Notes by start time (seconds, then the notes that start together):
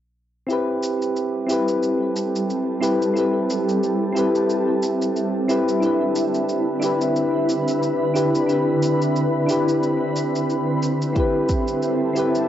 0.47 G3 C4 E4 A4, shaker
0.51 G4 B4
0.83 shaker
1.02 shaker
1.16 shaker
1.47 C4 E4 G4, shaker
1.53 B4
1.68 shaker
1.83 shaker
2.16 shaker
2.36 shaker
2.50 shaker
2.81 C4 E4 G4 B4, shaker
3.02 shaker
3.14 C4 E4, shaker
3.18 G4 B4
3.50 shaker
3.69 shaker
3.83 shaker
4.12 C4 E4, shaker
4.17 G4 B4
4.35 shaker
4.50 shaker
4.83 shaker
5.02 shaker
5.16 shaker
5.48 C4 E4 G4 B4, shaker
5.68 shaker
5.80 D3 C4 D4 E4 B4, shaker
5.85 G4 B4
6.16 shaker
6.34 shaker
6.49 shaker
6.80 D4 E4 G4, shaker
6.86 B4
7.01 shaker
7.16 shaker
7.49 shaker
7.68 shaker
7.83 shaker
8.14 D4 E4 G4 B4, shaker
8.35 shaker
8.46 D4 E4 G4, shaker
8.53 B4
8.83 shaker
9.02 shaker
9.16 shaker
9.46 D4 E4, shaker
9.50 G4 B4
9.69 shaker
9.83 shaker
10.16 shaker
10.35 shaker
10.50 shaker
10.83 shaker
11.02 shaker
11.13 G3 C4 E4, kick, shaker
11.17 G4 A4 B4
11.49 kick, shaker
11.68 shaker
11.82 shaker
12.13 C4 E4 G4, shaker
12.19 B4
12.35 shaker